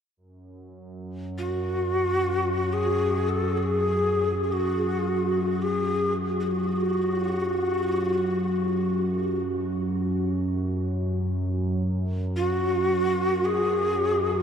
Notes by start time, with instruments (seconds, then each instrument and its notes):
0.17 synth drone F#2
1.38 native american-style wooden flute F#4
2.73 native american-style wooden flute G#4
3.28 native american-style wooden flute A4
3.57 native american-style wooden flute A4
3.63 native american-style wooden flute G#4
4.44 native american-style wooden flute G#4
4.52 native american-style wooden flute F#4
5.62 native american-style wooden flute G#4
6.40 native american-style wooden flute F#4
12.36 native american-style wooden flute F#4
13.45 native american-style wooden flute G#4